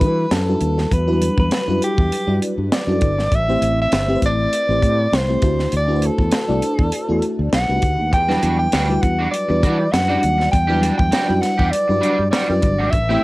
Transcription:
Already playing: G3 D4 E4 F#4 A4 B4
0.01 E3, kick, closed hi-hat
0.31 F#2 A4, snare, closed hi-hat
0.47 G3 D4 E4 F#4 B4
0.61 D#2, closed hi-hat
0.78 snare
0.92 E2 B4, kick, closed hi-hat
1.07 F#3 D4 E4 F#4 B4
1.13 G3
1.22 closed hi-hat
1.38 E2 B4, kick
1.51 snare, closed hi-hat
1.67 F#2 G3 D4 E4 F#4 B4
1.82 G4, closed hi-hat
1.98 E2, kick
2.12 closed hi-hat
2.27 G2 G3 D4 E4 F#4 D5
2.42 closed hi-hat
2.58 G2
2.72 D5, snare, closed hi-hat
2.87 F#2 G3 D4 E4 F#4 A4
3.01 G1, kick, closed hi-hat
3.18 G#1, snare
3.32 A1 E5, kick, closed hi-hat
3.48 A3 C4 E4 G4 C5
3.62 A1, closed hi-hat
3.81 E5
3.92 G1, snare, closed hi-hat
4.08 A3 C4 E4 G4 B4
4.15 C5
4.22 A1 D5, kick, closed hi-hat
4.53 closed hi-hat
4.68 A1 A3 C4 E4 G4 C5
4.82 A2, kick, closed hi-hat
5.12 C2 C5, snare, closed hi-hat
5.28 A3 C4 E4 G4 C5
5.42 D2 A3 D4 E4 F#4 C5, kick, closed hi-hat
5.59 snare
5.72 D2, closed hi-hat
5.76 D5
5.88 A3 D4 E4 F#4 B4
5.96 C5
6.02 closed hi-hat
6.06 A4
6.19 E2, kick
6.32 snare, closed hi-hat
6.48 C2 A3 D4 E4 F#4 D5
6.62 closed hi-hat
6.79 E2, kick
6.92 closed hi-hat
7.08 E2 A3 D4 E4 F#4 A4
7.22 closed hi-hat
7.39 D2
7.53 B1 F#5, snare, closed hi-hat
7.68 C2 A3 D4 F#4 G4 B4
7.75 D#4
7.82 D2, kick, closed hi-hat
7.99 D#2
8.12 E2 G5, muted clean electric guitar stroke, kick, closed hi-hat
8.28 F#3 G3 D4 E4 F#4 B4, snare
8.42 E2 G3 D4 F#4, closed hi-hat
8.59 G5, muted clean electric guitar stroke
8.72 D2 G3 D4 F#4, snare, closed hi-hat
8.89 G3 D4 E4 F#4 B4, muted clean electric guitar stroke
9.02 E2 F#5, muted clean electric guitar stroke, kick, closed hi-hat
9.19 G3 D4 F#4
9.31 D5, muted clean electric guitar stroke, closed hi-hat
9.48 E2 G3 D4 E4 F#4 B4, muted clean electric guitar stroke
9.63 E3 G3 D4 F#4, kick, closed hi-hat
9.79 muted clean electric guitar stroke
9.92 F#2 F#5, muted clean electric guitar stroke, snare, closed hi-hat
10.08 F#3 G3 D4 E4 F#4 D5
10.15 G3
10.22 D#2, muted clean electric guitar stroke, closed hi-hat
10.38 muted clean electric guitar stroke, snare
10.52 E2 G5, muted clean electric guitar stroke, kick, closed hi-hat
10.67 F#3 G3 D4 E4 G4 B4
10.75 G3
10.81 G3 D4 F#4, closed hi-hat
10.98 E2 G5, muted clean electric guitar stroke, kick
11.11 G3 D4 F#4, snare, closed hi-hat
11.28 F#2 G3 D4 E4 F#4 D5, muted clean electric guitar stroke
11.41 F#5, muted clean electric guitar stroke, snare, closed hi-hat
11.58 E2 G3 D4 G4, kick
11.71 D5, muted clean electric guitar stroke, closed hi-hat
11.88 G2 F#3 D4 E4 F#4 B4, muted clean electric guitar stroke
11.95 G3
12.01 G3 D4 F#4, closed hi-hat
12.18 G2, muted clean electric guitar stroke
12.31 G3 D4 F#4 D5, snare, closed hi-hat
12.48 F#2 F#3 D4 E4 F#4 B4, muted clean electric guitar stroke
12.55 G3
12.62 G1, muted clean electric guitar stroke, kick, closed hi-hat
12.79 G#1 G3 D4 F#4
12.91 A1 E5, muted clean electric guitar stroke, kick, closed hi-hat
13.09 A3 C4 E4 G4 C5

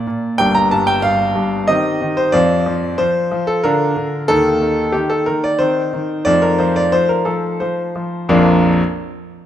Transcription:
Already playing: A#3 D4 D5
0.07 A#2
0.38 G1 G2 A#3 D4 G5
0.55 A#5
0.71 G2 A5
0.87 G5
1.02 G2 F5
1.35 G2
1.68 D#3 C4 G4 D#5
2.02 D#3
2.17 C5
2.32 F2 F3 C4 F4 D5
2.66 F3
2.98 F3 C5
3.32 F3
3.47 A4
3.64 D3 D4 F4 A#4
3.97 D3
4.28 D#2 D#3 A#3 D#4 A4
4.62 D#3
4.92 D#3 G4
5.10 A4
5.26 D#3 A#4
5.44 D5
5.59 D#3 C4 D#4 C5
5.93 D#3
6.25 F2 F3 A3 D#4 D5
6.42 A#4
6.59 F3 C5
6.76 D5
6.92 F3 C5
7.09 A#4
7.25 F3 A4
7.60 F3 C5
7.96 F3
8.29 A#1 F2 F3 A#3 D4 F4 A#4

